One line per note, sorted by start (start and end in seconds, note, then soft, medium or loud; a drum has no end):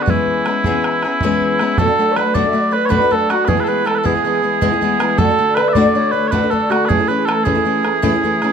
0.02 0.10 F#4 medium
0.07 0.46 E3 medium
0.07 0.45 G#3 medium
0.07 0.47 B3 medium
0.07 0.46 C#4 medium
0.07 1.78 E4 medium
0.07 0.46 G#4 medium
0.07 bodhran medium
0.27 bodhran soft
0.46 0.65 G#3 soft
0.46 0.65 B3 soft
0.46 0.65 C#4 medium
0.46 0.64 G#4 soft
0.46 bodhran medium
0.64 1.04 E3 medium
0.64 1.04 G#3 medium
0.64 1.06 B3 medium
0.64 1.04 C#4 medium
0.64 1.03 G#4 medium
0.64 bodhran medium
0.84 bodhran medium
1.03 1.22 B3 soft
1.03 1.22 C#4 soft
1.03 1.22 G#4 soft
1.03 bodhran medium
1.21 1.61 E3 medium
1.21 1.59 G#3 medium
1.21 1.60 B3 medium
1.21 1.60 C#4 loud
1.21 1.61 G#4 loud
1.21 bodhran medium
1.31 bodhran soft
1.41 bodhran soft
1.59 1.79 G#3 medium
1.59 1.79 B3 medium
1.59 1.79 C#4 medium
1.59 1.79 G#4 medium
1.59 bodhran medium
1.78 1.88 B2 medium
1.78 1.89 F#3 medium
1.78 1.88 A3 medium
1.78 1.88 D4 medium
1.78 1.86 F#4 medium
1.78 2.13 A4 medium
1.78 2.17 A4 medium
1.78 bodhran medium
1.87 1.98 A3 soft
1.87 1.99 D4 soft
1.87 1.98 F#4 medium
1.98 2.15 F#3 medium
1.98 2.16 A3 medium
1.98 2.16 D4 medium
1.98 2.17 F#4 medium
2.11 2.18 C#5 medium
2.16 2.34 F#3 medium
2.16 2.34 A3 medium
2.16 2.35 D4 medium
2.16 2.34 F#4 medium
2.16 2.37 B4 medium
2.16 2.35 B4 medium
2.16 bodhran medium
2.34 2.45 B2 medium
2.34 2.45 F#3 medium
2.34 2.45 A3 medium
2.34 2.43 D4 medium
2.34 2.42 F#4 medium
2.34 2.73 D5 medium
2.34 2.50 D5 medium
2.34 bodhran medium
2.43 2.52 A3 soft
2.43 2.53 D4 soft
2.43 2.53 F#4 soft
2.43 bodhran soft
2.48 2.70 F#3 soft
2.48 2.62 E5 medium
2.53 2.70 A3 medium
2.53 2.71 D4 medium
2.53 2.72 F#4 medium
2.61 2.76 D5 medium
2.71 2.89 F#3 soft
2.71 2.89 A3 medium
2.71 2.89 D4 soft
2.71 2.89 F#4 soft
2.71 2.86 B4 medium
2.71 2.92 B4 medium
2.86 3.00 B2 medium
2.86 2.90 C#5 medium
2.90 3.01 F#3 medium
2.90 3.01 A3 medium
2.90 3.01 D4 medium
2.90 3.00 F#4 medium
2.90 3.12 B4 medium
2.90 3.15 B4 medium
2.90 bodhran medium
3.01 3.10 A3 soft
3.01 3.11 D4 soft
3.01 3.11 F#4 medium
3.10 3.28 F#3 medium
3.10 3.29 A3 medium
3.10 3.30 D4 medium
3.10 3.31 F#4 medium
3.10 3.30 A4 medium
3.10 bodhran soft
3.29 3.47 F#3 medium
3.29 3.47 A3 medium
3.29 3.48 D4 medium
3.29 3.45 F#4 medium
3.29 3.49 F#4 medium
3.29 3.48 F#4 medium
3.29 bodhran medium
3.45 3.58 E3 medium
3.45 3.57 G#3 medium
3.45 3.56 B3 medium
3.45 3.56 E4 medium
3.45 3.87 G#4 medium
3.45 3.60 G#4 medium
3.45 3.48 B4 medium
3.45 bodhran medium
3.57 3.66 G#3 soft
3.57 3.67 B3 medium
3.57 3.67 E4 soft
3.57 3.64 B4 soft
3.64 3.84 E3 medium
3.64 3.85 G#3 medium
3.64 3.68 A4 soft
3.68 3.85 B3 medium
3.68 3.86 E4 medium
3.68 3.86 B4 medium
3.85 4.02 E3 medium
3.85 4.03 G#3 soft
3.85 4.04 B3 medium
3.85 4.04 E4 medium
3.85 3.95 A4 medium
3.85 4.06 A4 medium
3.85 bodhran medium
3.95 4.05 A4 medium
3.95 3.98 B4 medium
4.04 4.14 E3 medium
4.04 4.15 G#3 medium
4.04 4.14 B3 medium
4.04 4.13 E4 medium
4.04 5.00 G#4 medium
4.04 5.18 G#4 medium
4.04 bodhran medium
4.14 4.25 G#3 soft
4.14 4.25 E4 soft
4.14 bodhran soft
4.25 4.41 E3 medium
4.25 4.42 G#3 medium
4.25 4.42 B3 medium
4.25 4.43 E4 medium
4.42 4.60 E3 soft
4.42 4.61 G#3 medium
4.42 4.61 B3 soft
4.42 4.61 E4 medium
4.61 4.72 E3 medium
4.61 4.72 G#3 medium
4.61 4.71 B3 loud
4.61 4.70 E4 loud
4.61 bodhran medium
4.71 4.81 G#3 medium
4.71 4.81 B3 medium
4.71 4.82 E4 medium
4.81 4.98 E3 medium
4.81 4.99 G#3 medium
4.81 5.00 B3 medium
4.81 5.01 E4 medium
4.81 bodhran soft
5.00 5.18 E3 medium
5.00 5.18 G#3 medium
5.00 5.18 B3 medium
5.00 5.19 E4 medium
5.00 bodhran medium
5.18 5.28 D2 medium
5.18 5.28 A2 medium
5.18 5.29 D3 medium
5.18 5.29 A3 medium
5.18 5.29 D4 medium
5.18 5.27 F#4 medium
5.18 5.55 A4 loud
5.18 5.59 A4 medium
5.18 bodhran medium
5.28 5.37 D3 soft
5.28 5.37 A3 soft
5.28 5.38 D4 medium
5.28 5.39 F#4 medium
5.38 5.55 D3 medium
5.38 5.56 A3 medium
5.38 5.57 D4 medium
5.38 5.58 F#4 medium
5.55 5.75 D3 medium
5.55 5.75 A3 medium
5.55 5.75 D4 medium
5.55 5.68 B4 medium
5.55 5.77 B4 medium
5.55 bodhran medium
5.59 5.76 F#4 medium
5.68 5.73 E5 medium
5.73 5.85 D2 medium
5.73 5.86 A2 medium
5.73 5.86 D3 medium
5.73 5.85 A3 medium
5.73 5.84 D4 loud
5.73 6.12 D5 medium
5.73 5.97 D5 medium
5.73 bodhran medium
5.77 5.84 F#4 loud
5.85 5.94 D3 soft
5.85 5.94 A3 soft
5.85 5.95 D4 soft
5.85 5.95 F#4 medium
5.85 bodhran soft
5.95 6.11 D3 medium
5.95 6.12 A3 medium
5.95 6.12 D4 medium
5.95 6.13 F#4 medium
5.95 6.32 C#5 medium
6.12 6.31 D3 soft
6.12 6.31 A3 soft
6.12 6.32 D4 soft
6.12 6.32 F#4 medium
6.12 6.28 B4 medium
6.28 6.42 D2 medium
6.28 6.50 B4 medium
6.28 6.31 C#5 medium
6.32 6.42 A2 medium
6.32 6.42 D3 medium
6.32 6.42 A3 medium
6.32 6.41 D4 medium
6.32 6.41 F#4 medium
6.32 6.53 B4 medium
6.32 bodhran medium
6.43 6.50 D3 soft
6.43 6.50 A3 soft
6.43 6.51 D4 soft
6.50 6.68 D3 medium
6.50 6.70 A3 medium
6.50 6.70 D4 medium
6.50 6.70 F#4 medium
6.50 6.70 A4 medium
6.50 6.71 A4 medium
6.50 bodhran soft
6.70 6.89 D3 medium
6.70 6.88 A3 medium
6.70 6.89 D4 soft
6.70 6.90 F#4 medium
6.70 6.85 F#4 medium
6.70 6.89 F#4 medium
6.70 bodhran medium
6.85 6.99 A2 medium
6.85 6.99 E3 medium
6.85 7.08 G#4 loud
6.85 7.01 G#4 medium
6.85 6.88 B4 loud
6.90 6.99 A3 medium
6.90 6.98 C#4 medium
6.90 6.97 E4 medium
6.90 bodhran medium
6.98 7.08 A3 soft
6.98 7.08 C#4 soft
6.98 7.09 E4 soft
6.98 7.13 G#4 medium
7.08 7.26 E3 medium
7.08 7.26 A3 medium
7.08 7.27 C#4 medium
7.08 7.28 E4 medium
7.08 7.26 B4 medium
7.14 7.28 G#4 medium
7.26 7.44 E3 soft
7.26 7.45 A3 medium
7.26 7.45 C#4 medium
7.26 7.46 E4 medium
7.26 7.44 A4 medium
7.26 bodhran medium
7.44 7.55 A2 medium
7.44 7.56 E3 medium
7.44 7.55 A3 medium
7.44 7.54 C#4 medium
7.44 7.54 E4 medium
7.44 8.53 G#4 medium
7.44 8.09 G#4 medium
7.44 bodhran medium
7.55 7.64 A3 soft
7.55 7.65 C#4 soft
7.55 7.65 E4 medium
7.55 bodhran soft
7.64 7.82 E3 soft
7.64 7.83 A3 medium
7.64 7.83 C#4 medium
7.64 7.84 E4 medium
7.83 8.02 E3 soft
7.83 8.02 A3 soft
7.83 8.02 C#4 medium
7.83 8.03 E4 medium
7.83 bodhran medium
8.02 8.12 A2 loud
8.02 8.13 E3 medium
8.02 8.13 A3 loud
8.02 8.13 C#4 loud
8.02 8.12 E4 loud
8.02 bodhran medium
8.13 8.23 A3 soft
8.13 8.23 C#4 soft
8.13 8.23 E4 medium
8.23 8.41 E3 medium
8.23 8.41 A3 medium
8.23 8.42 C#4 medium
8.23 8.42 E4 medium
8.23 bodhran soft
8.42 8.53 E3 medium
8.42 8.53 A3 medium
8.42 8.53 C#4 medium
8.42 8.53 E4 medium
8.42 bodhran medium